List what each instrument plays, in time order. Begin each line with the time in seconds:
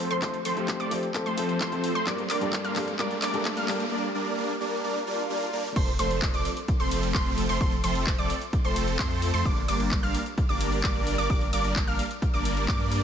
Already playing: riser
0.11 supersaw synth F3 A3 C4 A4 C5, synth pluck C6, closed hi-hat
0.22 grand piano F3 A3 C4 A4, supersaw synth A4 C5, synth pluck C6, kick, clap, closed hi-hat
0.34 closed hi-hat
0.45 supersaw synth F3 A3 C4 A4 C5, synth pluck C6, open hi-hat
0.56 grand piano F3 A3 C4 G4, closed hi-hat
0.68 kick, clap, closed hi-hat
0.80 supersaw synth F3 A3 C4 A4 D5, synth pluck D6, closed hi-hat
0.91 grand piano F3 A3 C4 G4, open hi-hat
1.03 closed hi-hat
1.14 grand piano F3 A3 C4 A4, kick, clap, closed hi-hat
1.26 supersaw synth F3 A3 C4 A4 C5, synth pluck C6, closed hi-hat
1.37 grand piano F3 A3 C4 A4, open hi-hat
1.49 closed hi-hat
1.61 supersaw synth F3 A3 C4 A4 C5, synth pluck C6, kick, clap, closed hi-hat
1.72 grand piano F3 A3 C4 A4, closed hi-hat
1.84 open hi-hat
1.95 supersaw synth F3 A3 C4 A4 C5, synth pluck C6, closed hi-hat
2.06 grand piano G2 G3 A#3 D4 A#4, supersaw synth G3 A#3 D4 A#4 D5, synth pluck D6, kick, clap, closed hi-hat
2.18 closed hi-hat
2.30 supersaw synth G3 A#3 D4 A#4 D5, synth pluck D6, clap, open hi-hat
2.41 grand piano G2 G3 A#3 D4 A4, closed hi-hat
2.53 kick, clap, closed hi-hat
2.64 supersaw synth G3 A#3 D4 A#4 F5, synth pluck F6, closed hi-hat
2.75 grand piano G2 G3 A#3 D4 A4, clap, open hi-hat
2.88 closed hi-hat
2.98 grand piano G2 G3 A#3 D4 A#4, supersaw synth G3 A#3 D4 A#4 D5, synth pluck D6, kick, clap, closed hi-hat
3.11 closed hi-hat
3.22 supersaw synth G3 A#3 D4 A#4 D5, synth pluck D6, clap, open hi-hat
3.33 grand piano G2 G3 A#3 D4 A4, closed hi-hat
3.45 kick, clap, closed hi-hat
3.57 supersaw synth G3 A#3 D4 A#4 F5, synth pluck F6, closed hi-hat
3.68 grand piano G2 G3 A#3 D4 A4, clap, open hi-hat
3.80 closed hi-hat
3.91 supersaw synth G3 A#3 D4 A#4 D5
4.14 supersaw synth G3 A#3 D4 A#4 D5
4.38 supersaw synth G3 A#3 D4 A#4 D5
4.61 supersaw synth G3 A#3 D4 A#4 D5
4.84 supersaw synth G3 A#3 D4 A#4 D5, swell
5.07 supersaw synth G3 A#3 D4 A#4 D5
5.30 supersaw synth G3 A#3 D4 A#4 D5
5.53 supersaw synth G3 A#3 D4 A#4 D5
5.76 sub bass F1, supersaw synth F3 A3 C4 A4 C5, synth pluck C6, kick, closed hi-hat, crash
5.88 closed hi-hat
5.99 sub bass F1, supersaw synth F3 A3 C4 A4 C5, synth pluck C6, open hi-hat
6.11 closed hi-hat
6.22 kick, clap, closed hi-hat
6.34 sub bass F1, supersaw synth F3 A3 C4 A4 D5, synth pluck D6, closed hi-hat
6.45 open hi-hat
6.57 closed hi-hat
6.68 kick, closed hi-hat
6.80 sub bass F1, supersaw synth F3 A3 C4 A4 C5, synth pluck C6, closed hi-hat
6.91 open hi-hat
7.03 closed hi-hat
7.15 sub bass F1, supersaw synth F3 A3 C4 A4 C5, synth pluck C6, kick, clap, closed hi-hat
7.26 closed hi-hat
7.38 open hi-hat
7.49 sub bass F1, supersaw synth F3 A3 C4 A4 C5, synth pluck C6, closed hi-hat
7.61 sub bass F1, supersaw synth F3 A3 A4, synth pluck C6, kick, closed hi-hat
7.72 closed hi-hat
7.84 sub bass F1, supersaw synth F3 A3 C4 A4 C5, synth pluck C6, open hi-hat
7.95 closed hi-hat
8.07 kick, clap, closed hi-hat
8.18 sub bass F1, supersaw synth F3 A3 C4 A4 D5, synth pluck D6, closed hi-hat
8.30 open hi-hat
8.41 closed hi-hat
8.53 kick, closed hi-hat
8.64 sub bass F1, supersaw synth F3 A3 C4 A4 C5, synth pluck C6, closed hi-hat
8.76 open hi-hat
8.88 closed hi-hat
8.99 sub bass F2, supersaw synth A3 C4 A4, synth pluck C6, kick, clap, closed hi-hat
9.11 closed hi-hat
9.22 open hi-hat
9.34 sub bass F2, supersaw synth F3 A3 C4 A4 C5, synth pluck C6, closed hi-hat
9.45 sub bass G1, supersaw synth G3 A#3 D4 D5, synth pluck D6, kick, closed hi-hat
9.57 closed hi-hat
9.68 sub bass G1, supersaw synth G3 A#3 D4 A#4 D5, synth pluck D6, open hi-hat
9.80 closed hi-hat
9.91 kick, clap, closed hi-hat
10.03 sub bass G1, supersaw synth G3 A#3 D4 A#4 F5, synth pluck F6, closed hi-hat
10.15 open hi-hat
10.26 closed hi-hat
10.38 kick, closed hi-hat
10.49 sub bass G1, supersaw synth G3 A#3 D4 A#4 D5, synth pluck D6, closed hi-hat
10.61 open hi-hat
10.72 closed hi-hat
10.84 sub bass G1, supersaw synth G3 D4 A#4 D5, synth pluck D6, kick, clap, closed hi-hat
10.95 closed hi-hat
11.07 open hi-hat
11.18 sub bass G1, supersaw synth G3 A#3 D4 A#4 D5, synth pluck D6, closed hi-hat
11.30 sub bass G1, supersaw synth G3 A#3 D4 A#4 D5, synth pluck D6, kick, closed hi-hat
11.41 closed hi-hat
11.53 sub bass G1, supersaw synth G3 A#3 D4 A#4 D5, synth pluck D6, open hi-hat
11.64 closed hi-hat
11.76 kick, clap, closed hi-hat
11.88 sub bass G1, supersaw synth G3 A#3 D4 A#4 F5, synth pluck F6, closed hi-hat
11.99 open hi-hat
12.11 closed hi-hat
12.22 kick, closed hi-hat
12.34 sub bass G1, supersaw synth G3 A#3 D4 A#4 D5, synth pluck D6, closed hi-hat
12.45 open hi-hat
12.57 closed hi-hat
12.68 sub bass G2, supersaw synth A#3, synth pluck D6, kick, clap, closed hi-hat
12.80 closed hi-hat
12.92 open hi-hat